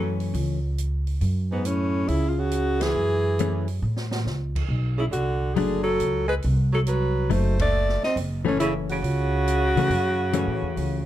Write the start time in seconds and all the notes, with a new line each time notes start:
Already playing: F#2 E3 F#3 A3 C#4 A4
0.20 open hi-hat
0.34 C#2, open hi-hat
0.78 closed hi-hat
1.07 open hi-hat
1.21 F#2, open hi-hat
1.51 G#2 B3
1.65 A2 C#4, closed hi-hat
2.08 C#2 C#3 E4, open hi-hat
2.28 C#3 F4
2.37 C#3 F#4
2.51 closed hi-hat
2.81 E3 G#4, snare, ride
2.95 F#2
3.39 E3 A3 C#4, closed hi-hat
3.68 open hi-hat
3.82 A2
3.97 snare
4.11 snare
4.25 C#2, snare
4.55 kick, crash
4.69 B1
4.98 C#3 E4
5.11 C2 D3 F#4, closed hi-hat
5.54 F#1 D3 F#3 A3 G#4, open hi-hat
5.58 D4
5.83 F#3 A4
6.00 C#2, closed hi-hat
6.28 G#3 B4
6.42 C2, open hi-hat
6.73 F#3 A4
6.87 F#3 B4, closed hi-hat
7.30 F#1 F#3 A3 D#4 C5, open hi-hat
7.59 A3 D5, kick, ride
7.89 snare
8.03 C4 D#5, muted upright bass stroke, snare
8.16 F#1, open hi-hat
8.45 A2 E3 A3 C#4
8.60 C#3 E4, closed hi-hat
8.89 C#3 F#4, open hi-hat
9.02 C#2, open hi-hat
9.48 closed hi-hat
9.76 C#3 E3 A3 C#4, open hi-hat
9.89 F#2, open hi-hat
10.33 E3 A3 C#4, closed hi-hat
10.47 A2
10.62 E2
10.76 C#2, open hi-hat